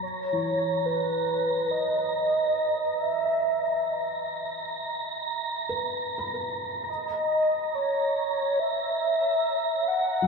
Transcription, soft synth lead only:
0.02 C#5
0.86 B4
1.71 D#5
3.00 E5
6.89 D#5
7.75 C#5
8.59 E5
9.88 F#5

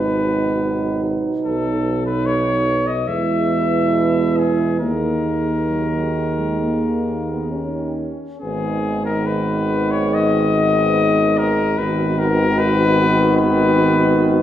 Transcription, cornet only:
Already playing: B4
1.45 A4
2.06 B4
2.26 C#5
2.87 D#5
3.08 E5
4.37 G#4
4.80 A#4
8.40 G#4
9.05 A#4
9.27 B4
9.91 C#5
10.14 D#5
11.38 A#4
11.78 B4
12.19 A#4
12.58 B4
13.37 B4

